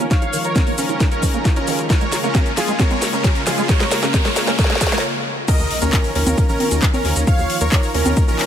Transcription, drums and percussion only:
0.11 kick, snare, closed hi-hat, shaker
0.22 closed hi-hat, shaker
0.33 open hi-hat, shaker
0.44 closed hi-hat, shaker
0.56 kick, snare, closed hi-hat, high conga, shaker
0.67 open hi-hat, shaker
0.78 open hi-hat, shaker
0.89 closed hi-hat, shaker
1.00 kick, snare, closed hi-hat, shaker
1.12 closed hi-hat, shaker
1.23 kick, open hi-hat, shaker
1.34 closed hi-hat, shaker
1.45 kick, snare, closed hi-hat, shaker
1.56 closed hi-hat, shaker
1.68 open hi-hat, shaker
1.79 closed hi-hat, shaker
1.90 kick, snare, closed hi-hat, shaker
2.01 closed hi-hat, shaker
2.12 snare, open hi-hat, shaker
2.24 closed hi-hat, shaker
2.35 kick, snare, closed hi-hat, high conga, shaker
2.46 closed hi-hat, shaker
2.57 snare, open hi-hat, shaker
2.68 closed hi-hat, shaker
2.79 kick, snare, closed hi-hat, high conga, shaker
2.91 closed hi-hat, high conga, shaker
3.02 snare, open hi-hat, shaker
3.13 closed hi-hat, shaker
3.24 kick, snare, closed hi-hat, shaker
3.36 closed hi-hat, shaker
3.47 snare, open hi-hat, shaker
3.58 closed hi-hat, shaker
3.69 kick, snare, closed hi-hat, shaker
3.80 snare, closed hi-hat, shaker
3.91 snare, open hi-hat, shaker
4.03 snare, closed hi-hat, shaker
4.14 kick, snare, closed hi-hat, high conga, shaker
4.25 snare, open hi-hat, shaker
4.36 snare, open hi-hat, shaker
4.47 snare, closed hi-hat, shaker
4.59 kick, snare, closed hi-hat, shaker
4.64 snare
4.70 snare, closed hi-hat, shaker
4.75 snare
4.81 kick, snare, open hi-hat, shaker
4.87 snare
4.92 snare, closed hi-hat, shaker
4.98 snare
5.48 kick, closed hi-hat, crash, shaker
5.59 shaker
5.71 open hi-hat
5.82 closed hi-hat, shaker
5.93 kick, clap, closed hi-hat, shaker
6.04 open hi-hat, shaker
6.15 open hi-hat
6.27 closed hi-hat, high conga, shaker
6.38 kick, closed hi-hat, shaker
6.49 shaker
6.60 open hi-hat, high conga
6.71 closed hi-hat, shaker
6.82 kick, clap, closed hi-hat, shaker
6.94 high conga, shaker
7.05 open hi-hat
7.16 closed hi-hat, shaker
7.27 kick, closed hi-hat, shaker
7.38 shaker
7.50 open hi-hat
7.61 closed hi-hat, shaker
7.72 kick, clap, closed hi-hat, shaker
7.83 open hi-hat, shaker
7.94 open hi-hat
8.06 closed hi-hat, high conga, shaker
8.17 kick, closed hi-hat, shaker
8.28 shaker
8.39 clap, open hi-hat

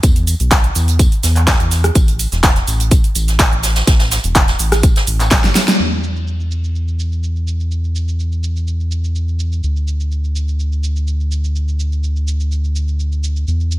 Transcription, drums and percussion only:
0.03 kick, closed hi-hat, tambourine, shaker
0.16 closed hi-hat, shaker
0.27 open hi-hat, tambourine, shaker
0.40 closed hi-hat, shaker
0.51 kick, snare, clap, closed hi-hat, tambourine, shaker
0.64 closed hi-hat, shaker
0.75 open hi-hat, tambourine, shaker
0.88 closed hi-hat, shaker
0.99 kick, closed hi-hat, tambourine, shaker
1.12 closed hi-hat, shaker
1.23 snare, open hi-hat, tambourine, shaker
1.36 clap, closed hi-hat, shaker
1.47 kick, snare, clap, closed hi-hat, tambourine, shaker
1.60 closed hi-hat, shaker
1.71 snare, open hi-hat, tambourine, shaker
1.84 cross-stick, closed hi-hat, shaker
1.95 kick, closed hi-hat, tambourine, shaker
2.08 closed hi-hat, shaker
2.19 open hi-hat, tambourine, shaker
2.32 snare, closed hi-hat, shaker
2.43 kick, snare, clap, closed hi-hat, tambourine, shaker
2.56 snare, closed hi-hat, shaker
2.67 open hi-hat, tambourine, shaker
2.80 closed hi-hat, shaker
2.91 kick, closed hi-hat, tambourine, shaker
3.04 closed hi-hat, shaker
3.15 open hi-hat, tambourine, shaker
3.28 snare, closed hi-hat, shaker
3.39 kick, snare, clap, closed hi-hat, tambourine, shaker
3.52 shaker
3.63 snare, open hi-hat, tambourine, shaker
3.76 snare, closed hi-hat, tambourine, shaker
3.87 kick, snare, closed hi-hat, tambourine, shaker
3.99 snare, closed hi-hat, tambourine, shaker
4.11 snare, open hi-hat, tambourine, shaker
4.23 closed hi-hat, shaker
4.34 kick, snare, clap, closed hi-hat, tambourine, shaker
4.48 snare, closed hi-hat, tambourine, shaker
4.59 closed hi-hat, open hi-hat, shaker
4.72 cross-stick, snare, closed hi-hat, tambourine, shaker
4.83 kick, closed hi-hat, tambourine, shaker
4.96 snare, closed hi-hat, tambourine, shaker
5.07 open hi-hat, shaker
5.20 clap, closed hi-hat, tambourine, shaker
5.31 kick, snare, clap, closed hi-hat, tambourine, shaker
5.44 snare, closed hi-hat, shaker
5.55 snare, open hi-hat, tambourine, shaker
5.68 snare, closed hi-hat, shaker
5.79 crash, shaker
5.92 shaker
6.03 shaker
6.16 shaker
6.27 shaker
6.40 shaker
6.51 shaker
6.64 shaker
6.75 shaker
6.88 shaker
6.99 shaker
7.12 shaker
7.23 shaker
7.36 shaker
7.47 shaker
7.60 shaker
7.72 shaker
7.84 shaker
7.96 shaker
8.08 shaker
8.20 shaker
8.32 shaker
8.44 shaker
8.56 shaker
8.68 shaker
8.80 shaker
8.92 shaker
9.04 shaker
9.16 shaker
9.28 shaker
9.40 shaker
9.52 shaker
9.64 shaker
9.76 shaker
9.88 shaker
10.00 shaker
10.12 shaker
10.24 shaker
10.36 shaker
10.48 shaker
10.60 shaker
10.72 shaker
10.84 shaker
10.96 shaker
11.08 shaker
11.20 shaker
11.32 shaker
11.44 shaker
11.56 shaker
11.68 shaker
11.80 shaker
11.92 shaker
12.04 shaker
12.16 shaker
12.28 shaker
12.40 shaker
12.52 shaker
12.64 shaker
12.76 shaker
12.88 shaker
13.00 shaker
13.12 shaker
13.24 shaker
13.36 shaker
13.48 shaker
13.60 shaker
13.72 shaker

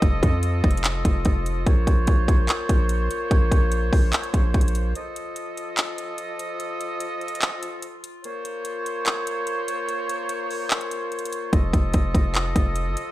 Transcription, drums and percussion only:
0.02 kick, closed hi-hat
0.23 kick, closed hi-hat
0.43 closed hi-hat
0.64 kick, closed hi-hat
0.71 closed hi-hat
0.77 closed hi-hat
0.84 clap, closed hi-hat
1.05 kick, closed hi-hat
1.25 kick, closed hi-hat
1.46 closed hi-hat
1.66 kick, closed hi-hat
1.87 kick, closed hi-hat
2.07 kick, closed hi-hat
2.28 kick, closed hi-hat
2.49 clap, closed hi-hat
2.69 kick, closed hi-hat
2.89 closed hi-hat
3.11 closed hi-hat
3.31 kick, closed hi-hat
3.52 kick, closed hi-hat
3.72 closed hi-hat
3.93 kick, open hi-hat
4.13 clap, closed hi-hat
4.23 closed hi-hat
4.34 kick, closed hi-hat
4.54 kick, closed hi-hat
4.61 closed hi-hat
4.68 closed hi-hat
4.75 closed hi-hat
4.95 closed hi-hat
5.16 closed hi-hat
5.36 closed hi-hat
5.57 closed hi-hat
5.77 clap, closed hi-hat
5.98 closed hi-hat
6.18 closed hi-hat
6.39 closed hi-hat
6.60 closed hi-hat
6.81 closed hi-hat
7.00 closed hi-hat
7.21 closed hi-hat
7.28 closed hi-hat
7.35 closed hi-hat
7.42 clap, closed hi-hat
7.63 closed hi-hat
7.82 closed hi-hat
8.04 closed hi-hat
8.24 closed hi-hat
8.45 closed hi-hat
8.65 closed hi-hat
8.86 closed hi-hat
9.06 clap, closed hi-hat
9.27 closed hi-hat
9.47 closed hi-hat
9.68 closed hi-hat
9.89 closed hi-hat
10.09 closed hi-hat
10.29 closed hi-hat
10.51 open hi-hat
10.71 clap, closed hi-hat
10.81 closed hi-hat
10.91 closed hi-hat
11.12 closed hi-hat
11.19 closed hi-hat
11.25 closed hi-hat
11.32 closed hi-hat
11.53 kick, closed hi-hat
11.73 kick, closed hi-hat
11.94 kick, closed hi-hat
12.15 kick, closed hi-hat
12.35 clap, closed hi-hat
12.56 kick, closed hi-hat
12.76 closed hi-hat
12.97 closed hi-hat

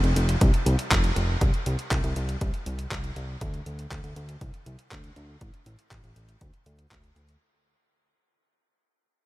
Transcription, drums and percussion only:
0.04 closed hi-hat
0.16 closed hi-hat
0.29 closed hi-hat
0.41 kick, closed hi-hat
0.54 closed hi-hat
0.66 closed hi-hat
0.79 closed hi-hat
0.91 kick, clap, closed hi-hat
1.04 closed hi-hat
1.16 closed hi-hat
1.41 kick, closed hi-hat
1.54 closed hi-hat
1.66 closed hi-hat
1.79 closed hi-hat
1.91 kick, clap, closed hi-hat
2.04 closed hi-hat
2.16 closed hi-hat
2.29 closed hi-hat
2.41 kick, closed hi-hat
2.54 closed hi-hat
2.66 closed hi-hat
2.79 closed hi-hat
2.91 kick, clap, closed hi-hat
3.04 closed hi-hat
3.16 closed hi-hat
3.41 kick, closed hi-hat
3.54 closed hi-hat
3.66 closed hi-hat
3.79 closed hi-hat
3.91 kick, clap, closed hi-hat
4.04 closed hi-hat
4.16 closed hi-hat
4.29 closed hi-hat
4.41 kick, closed hi-hat
4.54 closed hi-hat
4.66 closed hi-hat
4.79 closed hi-hat
4.91 kick, clap, closed hi-hat
5.04 closed hi-hat
5.16 closed hi-hat
5.41 kick, closed hi-hat
5.54 closed hi-hat
5.66 closed hi-hat
5.79 closed hi-hat
5.91 kick, clap, closed hi-hat
6.04 closed hi-hat
6.16 closed hi-hat
6.29 closed hi-hat
6.41 kick, closed hi-hat
6.54 closed hi-hat
6.66 closed hi-hat
6.79 closed hi-hat
6.91 kick, clap, closed hi-hat
7.04 closed hi-hat
7.16 closed hi-hat
7.29 closed hi-hat

